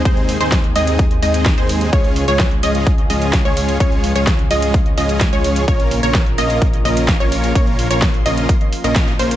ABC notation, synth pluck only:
X:1
M:4/4
L:1/16
Q:1/4=128
K:Dblyd
V:1 name="Synth pluck"
c3 c2 z e2 z2 e3 c3 | d3 d2 z e2 z2 e3 d3 | d3 d2 z e2 z2 e3 d3 | d3 d2 z e2 z2 e3 d3 |
d3 d2 z e2 z3 e2 z c2 |]